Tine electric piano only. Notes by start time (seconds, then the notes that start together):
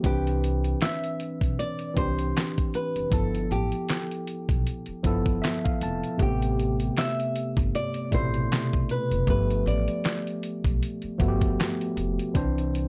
0.03 E3 C4 D4 B4
1.94 E3 C4 D4 G4
3.10 F3 B3 E4 A4
5.03 F3 B3 E4 A4
5.42 E5
5.65 F5
5.83 A5
6.18 C3 A3 B3 G4
8.11 B2 C3 A3 E4
9.27 F3 A3 B3 G4
11.18 F3 A3 B3 F#4
11.28 G4
12.34 E3 C4 D4 C5